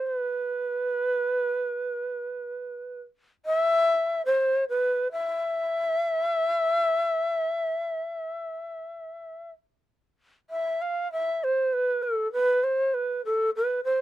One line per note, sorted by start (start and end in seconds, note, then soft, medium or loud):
0.06 3.01 B4 medium
3.46 3.57 D#5 loud
3.57 4.22 E5 loud
4.26 4.65 C5 medium
4.69 5.08 B4 medium
5.12 9.50 E5 medium
10.50 10.83 E5 medium
10.82 11.11 F5 medium
11.12 11.45 E5 medium
11.44 11.75 C5 medium
11.73 12.04 B4 medium
12.02 12.31 A4 medium
12.32 12.65 B4 medium
12.64 12.95 C5 medium
12.94 13.22 B4 medium
13.25 13.50 A4 medium
13.56 13.81 B4 medium
13.84 14.01 C5 medium